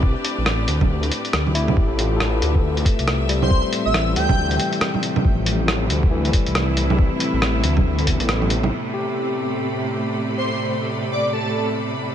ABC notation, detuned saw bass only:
X:1
M:4/4
L:1/16
Q:"Swing 16ths" 1/4=138
K:Am
V:1 name="Detuned saw bass" clef=bass
C,, z2 A,,,3 D,,4 z2 D,,4 | A,,,6 D,,4 z C,,4- C,,- | C,, z2 A,,,3 D,,4 z6 | A,,,6 D,,4 z C,,4- C,,- |
C,, z2 A,,,3 D,,4- D,, A,,,4- A,,, | z16 | z16 |]